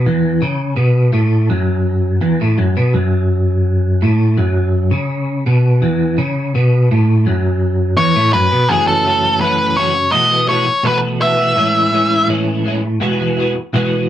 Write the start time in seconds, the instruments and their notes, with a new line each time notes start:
0.06 clean electric guitar E2
0.42 clean electric guitar C#3
0.76 clean electric guitar B2
1.13 clean electric guitar A2
1.50 clean electric guitar F#2
2.21 clean electric guitar E2
2.41 clean electric guitar A2
2.58 clean electric guitar F#2
2.77 clean electric guitar B2
2.94 clean electric guitar F#2
4.02 clean electric guitar A2
4.37 clean electric guitar F#2
4.91 clean electric guitar C#3
5.46 clean electric guitar B2
5.82 clean electric guitar E2
6.18 clean electric guitar C#3
6.55 clean electric guitar B2
6.91 clean electric guitar A2
7.26 clean electric guitar F#2
7.97 clean electric guitar E2, lead electric guitar C#5
8.16 clean electric guitar A2
8.33 clean electric guitar F#2, lead electric guitar B4
8.52 clean electric guitar B2
8.69 clean electric guitar F#2 C#3 E3 A3 C#4 F#4, lead electric guitar G#4
8.88 lead electric guitar A4
9.05 clean electric guitar E3 A3 C#4 F#4
9.41 clean electric guitar F#2 C#3 E3 A3 C#4 F#4, lead electric guitar B4
9.77 clean electric guitar E3 A3 C#4 F#4, lead electric guitar C#5
9.95 muted clean electric guitar stroke
10.12 clean electric guitar B2 E3 A3 B3 F#4, lead electric guitar D#5
10.31 clean electric guitar A3 B3 F#4
10.48 clean electric guitar E3 A3 B3 F#4, lead electric guitar C#5
10.67 muted clean electric guitar stroke
10.83 clean electric guitar B2 E3 A3 B3 F#4, lead electric guitar B4
11.20 clean electric guitar E3 A3 B3 F#4, lead electric guitar E5
11.38 clean electric guitar A3 B3 F#4
11.55 clean electric guitar A2 E3 G#3 C#4 E4
11.92 clean electric guitar E3 G#3 C#4 E4
12.27 clean electric guitar A2 E3 G#3 C#4 E4
12.64 clean electric guitar E3 G#3 C#4 E4
12.82 muted clean electric guitar stroke
13.00 clean electric guitar E2 B2 E3 G#3 B3 F#4
13.18 clean electric guitar E3 G#3 B3 F#4
13.37 clean electric guitar E3 G#3 B3 F#4
13.55 muted clean electric guitar stroke
13.73 clean electric guitar E2 B2 E3 G#3 B3 F#4